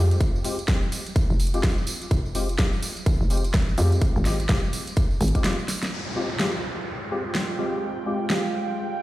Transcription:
Already playing: fm bass F2, synth stab G#3 C4 F4 G4
0.11 closed hi-hat, tambourine
0.20 kick, closed hi-hat, tambourine
0.35 tambourine
0.44 synth stab G#3 C4 F4 G4, open hi-hat, tambourine
0.59 closed hi-hat, tambourine
0.68 synth stab G#3 C4 F4 G4, kick, snare, closed hi-hat, tambourine
0.82 tambourine
0.92 open hi-hat, tambourine
1.06 closed hi-hat, tambourine
1.16 kick, closed hi-hat, tambourine
1.30 fm bass F1, tambourine
1.39 open hi-hat, tambourine
1.47 closed hi-hat
1.54 synth stab G#3 C4 F4 G4, closed hi-hat, tambourine
1.63 synth stab G#3 C4 F4 G4, kick, snare, closed hi-hat, tambourine
1.78 tambourine
1.87 open hi-hat, tambourine
2.02 closed hi-hat, tambourine
2.11 fm bass F1, kick, closed hi-hat, tambourine
2.26 tambourine
2.35 synth stab G#3 C4 F4 G4, open hi-hat, tambourine
2.49 closed hi-hat, tambourine
2.59 synth stab G#3 C4 F4 G4, kick, snare, closed hi-hat, tambourine
2.73 tambourine
2.82 open hi-hat, tambourine
2.96 closed hi-hat, tambourine
3.06 fm bass G#1, kick, closed hi-hat, tambourine
3.21 fm bass F1, tambourine
3.30 synth stab G#3 C4 F4 G4, open hi-hat, tambourine
3.37 closed hi-hat
3.44 closed hi-hat, tambourine
3.54 fm bass G#1, kick, snare, closed hi-hat, tambourine
3.69 tambourine
3.78 fm bass F2, synth stab G#3 C4 F4 G4, open hi-hat, tambourine
3.92 closed hi-hat, tambourine
4.01 kick, closed hi-hat, tambourine
4.16 fm bass G#1, tambourine
4.25 synth stab G#3 C4 F4 G4, snare, open hi-hat, tambourine
4.40 closed hi-hat, tambourine
4.49 fm bass F1, synth stab G#3 C4 F4 G4, kick, snare, closed hi-hat, tambourine
4.64 tambourine
4.73 open hi-hat, tambourine
4.87 closed hi-hat, tambourine
4.96 kick, closed hi-hat, tambourine
5.11 tambourine
5.21 fm bass G#1, open hi-hat, tambourine
5.28 closed hi-hat
5.35 synth stab G#3 C4 F4 G4, kick, closed hi-hat, tambourine
5.44 synth stab G#3 C4 F4 G4, snare, closed hi-hat, tambourine
5.59 tambourine
5.68 snare, open hi-hat, tambourine
5.83 snare, closed hi-hat, tambourine
5.92 ambient pad G#3 G4 F5, analog synth pad F4, downlifter
6.16 synth stab G#3 C4 F4 G4
6.40 synth stab G#3 C4 F4 G4, snare
6.61 analog synth pad G#3 G5
7.11 synth stab G#3 C4 F4 G4
7.35 snare
7.59 synth stab G#3 C4 F4 G4
8.06 synth stab G#3 C4 F4 G4
8.30 synth stab G#3 C4 F4 G4, snare

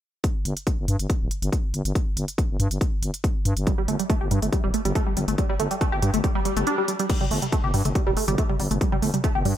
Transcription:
0.24 kick, closed hi-hat
0.45 fm bass G1, closed hi-hat
0.57 closed hi-hat
0.67 kick, closed hi-hat
0.78 fm bass G1
0.88 fm bass G2, closed hi-hat
0.99 fm bass G1, closed hi-hat
1.10 kick, closed hi-hat
1.21 fm bass D1
1.31 closed hi-hat
1.42 fm bass G1, closed hi-hat
1.52 kick, closed hi-hat
1.74 fm bass G1, closed hi-hat
1.85 fm bass G1, closed hi-hat
1.95 kick, closed hi-hat
2.17 fm bass G1, closed hi-hat
2.28 closed hi-hat
2.38 kick, closed hi-hat
2.50 fm bass G1
2.60 fm bass G2, closed hi-hat
2.71 fm bass G1, closed hi-hat
2.81 kick, closed hi-hat
3.03 fm bass G1, closed hi-hat
3.14 closed hi-hat
3.24 kick, closed hi-hat
3.45 fm bass G2, closed hi-hat
3.57 fm bass G1, closed hi-hat
3.67 synth arpeggio sound G3, kick, closed hi-hat
3.78 synth arpeggio sound G3
3.88 fm bass G1, synth arpeggio sound A3, closed hi-hat
3.99 synth arpeggio sound G3, closed hi-hat
4.10 synth arpeggio sound A3, kick, closed hi-hat
4.21 fm bass G1, synth arpeggio sound G4
4.31 fm bass G2, synth arpeggio sound G3, closed hi-hat
4.42 fm bass G1, synth arpeggio sound A3, closed hi-hat
4.53 synth arpeggio sound G3, kick, closed hi-hat
4.64 fm bass D1, synth arpeggio sound G3
4.74 synth arpeggio sound A3, closed hi-hat
4.85 fm bass G1, synth arpeggio sound G3, closed hi-hat
4.95 synth arpeggio sound A3, kick, closed hi-hat
5.07 synth arpeggio sound G3
5.17 fm bass G1, synth arpeggio sound G3, closed hi-hat
5.28 fm bass G1, synth arpeggio sound A3, closed hi-hat
5.38 synth arpeggio sound G3, kick, closed hi-hat
5.49 synth arpeggio sound G3
5.60 fm bass G1, synth arpeggio sound A3, closed hi-hat
5.71 synth arpeggio sound G3, closed hi-hat
5.81 synth arpeggio sound A3, kick, closed hi-hat
5.92 fm bass G1, synth arpeggio sound G4
6.02 fm bass G2, synth arpeggio sound G3, closed hi-hat
6.14 fm bass G1, synth arpeggio sound A3, closed hi-hat
6.24 synth arpeggio sound G3, kick, closed hi-hat, swell
6.35 synth arpeggio sound G3
6.45 synth arpeggio sound G3, closed hi-hat
6.57 fm bass G1, synth arpeggio sound A3, closed hi-hat
6.67 synth arpeggio sound D4, closed hi-hat
6.78 synth arpeggio sound G3
6.88 synth arpeggio sound G3, closed hi-hat
6.99 synth arpeggio sound G3, closed hi-hat
7.10 synth arpeggio sound G3, kick, closed hi-hat, crash
7.21 synth arpeggio sound G3, mid tom
7.31 fm bass G1, synth arpeggio sound A3, open hi-hat
7.42 synth arpeggio sound G3, closed hi-hat, mid tom
7.52 synth arpeggio sound A3, kick, closed hi-hat
7.64 fm bass G1, synth arpeggio sound G4, mid tom
7.74 fm bass G2, synth arpeggio sound G3, open hi-hat
7.85 fm bass G1, synth arpeggio sound A3, closed hi-hat, mid tom
7.95 synth arpeggio sound G3, kick, closed hi-hat
8.07 fm bass D1, synth arpeggio sound G3, mid tom
8.17 synth arpeggio sound A3, open hi-hat
8.28 fm bass G1, synth arpeggio sound G3, closed hi-hat, mid tom
8.38 synth arpeggio sound A3, kick, closed hi-hat
8.49 synth arpeggio sound G3, mid tom
8.60 fm bass G1, synth arpeggio sound G3, open hi-hat
8.71 fm bass G1, synth arpeggio sound A3, closed hi-hat, mid tom
8.81 synth arpeggio sound G3, kick, closed hi-hat
8.92 synth arpeggio sound G3, mid tom
9.02 fm bass G1, synth arpeggio sound A3, open hi-hat
9.14 synth arpeggio sound G3, closed hi-hat, mid tom
9.24 synth arpeggio sound A3, kick, closed hi-hat
9.35 fm bass G1, synth arpeggio sound G4, mid tom
9.45 fm bass G2, synth arpeggio sound G3, open hi-hat

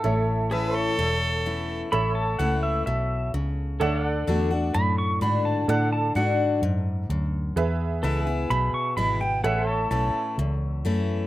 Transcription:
Already playing: pedal steel guitar A4
0.04 fingered electric bass A1, steel-string acoustic guitar A2, honky-tonk piano A4 C#5 E5
0.51 steel-string acoustic guitar E3 A3 C#4 E4, pedal steel guitar G#4 B4 E5, fiddle B4
0.71 pedal steel guitar A4, fiddle A4
0.77 pedal steel guitar C#5
0.98 fingered electric bass E1, steel-string acoustic guitar E2
1.46 steel-string acoustic guitar E3 A3 C#4 E4
1.92 fingered electric bass A1, steel-string acoustic guitar A2, honky-tonk piano A4 C#5 E5, pedal steel guitar A4 C#5 E5 B5
2.15 pedal steel guitar A5
2.39 fingered electric bass C#2, steel-string acoustic guitar E3 A3 C#4 E4, pedal steel guitar F#5
2.63 pedal steel guitar E5
2.86 fingered electric bass B1, steel-string acoustic guitar B2, pedal steel guitar E5
3.34 fingered electric bass C#2, steel-string acoustic guitar C#3
3.80 fingered electric bass D2, steel-string acoustic guitar D3, honky-tonk piano A4 D5 F#5, pedal steel guitar A4 C#5 E5
4.01 pedal steel guitar D5
4.07 pedal steel guitar F#5
4.27 fingered electric bass E2, steel-string acoustic guitar D3 A3 D4 F#4
4.51 steel-string acoustic guitar D4 F#4
4.74 fingered electric bass F#2, steel-string acoustic guitar A2, pedal steel guitar B5
4.98 pedal steel guitar C#6
5.21 fingered electric bass G#2, steel-string acoustic guitar D3 D4 F#4, pedal steel guitar B5
5.45 pedal steel guitar A5
5.68 fingered electric bass A2, steel-string acoustic guitar D3, honky-tonk piano A4 D5 A5, pedal steel guitar F#5
5.93 pedal steel guitar A5
6.15 fingered electric bass G#2, steel-string acoustic guitar D3 D4 F#4, pedal steel guitar F#5
6.62 fingered electric bass F#2, steel-string acoustic guitar G#2
7.09 fingered electric bass D2, steel-string acoustic guitar F#2
7.56 fingered electric bass E2, steel-string acoustic guitar E2, honky-tonk piano G#4 B4 E5
8.03 fingered electric bass C#2, steel-string acoustic guitar E3 G#3 B3 E4, pedal steel guitar A4 B4 E5
8.23 steel-string acoustic guitar E4, pedal steel guitar G#4
8.29 steel-string acoustic guitar B3
8.50 fingered electric bass B1, steel-string acoustic guitar B2, pedal steel guitar B5
8.73 pedal steel guitar C#6, muted fingered electric bass stroke
8.97 fingered electric bass G#1, steel-string acoustic guitar E3 G#3 B3 E4, pedal steel guitar B5
9.21 steel-string acoustic guitar B3 E4, pedal steel guitar G5
9.44 fingered electric bass A1, steel-string acoustic guitar A2, pedal steel guitar G#4 B4 E5 F#5, honky-tonk piano A4 C#5 E5
9.64 pedal steel guitar A4 A5
9.70 pedal steel guitar C#5
9.91 fingered electric bass B1, steel-string acoustic guitar E3 A3 C#4 E4, pedal steel guitar A5
10.38 fingered electric bass C#2, steel-string acoustic guitar E2
10.85 fingered electric bass F#2, steel-string acoustic guitar E3 A3 C#4 E4

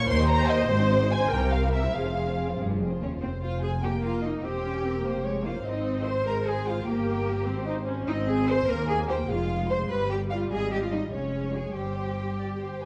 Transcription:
0.08 cello section D#2, double bass section D#2, violin section A#4 C#5 C6, viola section C5
0.19 violin section G4 D#5
0.29 violin section A#4 C#5 A#5
0.39 violin section G4 D#5
0.49 violin section A#4 C#5 D#5
0.59 violin section G4 D#5
0.69 double bass section G#1, cello section G#2, violin section C4 C5
0.80 violin section D#4 D#5
0.91 violin section C4 C5
1.01 violin section D#4 D#5
1.10 violin section C4 C5 G#5
1.21 violin section D#4 D#5
1.30 double bass section C2, cello section C3, violin section G4 A#4 G5, viola section A#4
1.41 violin section E4 C5
1.52 violin section G4 A#4 F5
1.63 violin section E4 C5
1.72 violin section G4 A#4 E5
1.85 violin section E4 C5
1.94 double bass section F1, cello section F2, violin section C4 G#4 F5, viola section G#4
2.04 violin section F4 C5
2.16 violin section C4 G#4
2.27 violin section F4 C5
2.38 violin section C4 G#4
2.50 violin section F4 C5
2.58 double bass section F1, cello section G2, violin section C4 G#4
2.70 violin section F4 C5
2.79 cello section F2, violin section C4 G#4
2.91 violin section F4 C5
3.00 cello section D#2 C#4, violin section C4 G#4 C#5
3.12 violin section F4 C5
3.20 double bass section F1, cello section C4, violin section C5
3.42 cello section F4, violin section F5
3.61 cello section G#4, violin section G#5
3.82 viola section A#3, cello section G4, violin section A#4 G5
4.02 cello section F4, violin section F5
4.22 cello section D#4, violin section D#5
4.43 double bass section E1, viola section C4, cello section G4, violin section C5 G5
4.64 viola section C#4, violin section C5
4.84 viola section C4, violin section A#4
5.02 double bass section F1, viola section A#3, violin section C5
5.25 viola section G#3, violin section C#5
5.44 viola section A#3, cello section F4, violin section C5 F5
5.64 double bass section G#1, viola section C4, cello section D#4, violin section C5 D#5
6.05 cello section C5, violin section C6
6.26 viola section G#3, cello section A#4, violin section A#5
6.46 cello section G#4, violin section G#5
6.67 cello section F4, violin section F5
6.86 double bass section G1, viola section A#3, cello section G4, violin section A#4 G5
7.46 double bass section G#1, viola section C4, violin section C5
7.67 viola section D#4
7.87 viola section C#4
8.07 double bass section G#1, viola section C4, cello section D#4, violin section D#5
8.28 cello section G#4, violin section G#5
8.47 violin section C5 C6, cello section C5
8.68 double bass section D#2, viola section A#3, cello section A#4, violin section A#5
8.88 cello section G#4, violin section G#5
9.09 cello section G4, violin section C5 G5
9.29 double bass section F1, viola section G#3, cello section F4, violin section F5
9.70 violin section C5 C6, cello section C5
9.90 double bass section G1, viola section G3, cello section B4, violin section B5
10.11 cello section G4, violin section G5
10.30 cello section F4, violin section F5
10.51 double bass section G#1, cello section G#4, violin section D#5 G#5
10.71 cello section G4, violin section G5
10.82 cello section F4, violin section F5
10.92 cello section D#4, violin section D#5
11.12 double bass section F1, viola section G#3, cello section C#4, violin section C#5
11.55 cello section G#4, violin section G#5
11.76 double bass section G1, viola section G3, cello section G4, violin section C5 G5
12.39 violin section D5
12.59 violin section C5
12.81 violin section B4 G#5

